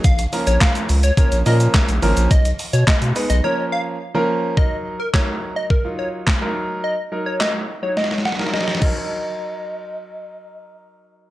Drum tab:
CC |--------------------------------|--------------------------------|--------------------------------|----------------------------x---|
HH |x-x-o-x-x-x-o-x-x-x-o-x-x-x-o-x-|x-x-o-x-x-x-o-x-----------------|--------------------------------|--------------------------------|
SH |x-x-x-x-x-x-x-x-x-x-x-x-x-x-x-x-|x-x-x-x-x-x-x-x-----------------|--------------------------------|--------------------------------|
CP |--------x---------------x-------|--------x-----------------------|--------x---------------x-------|--------x-----------------------|
SD |--------o---------------o-------|--------o-----------------------|--------o---------------o-------|--------o-------oooooooooooo----|
BD |o-------o-------o-------o-------|o-------o-----------------------|o-------o-------o-------o-------|----------------------------o---|

CC |--------------------------------|
HH |--------------------------------|
SH |--------------------------------|
CP |--------------------------------|
SD |--------------------------------|
BD |--------------------------------|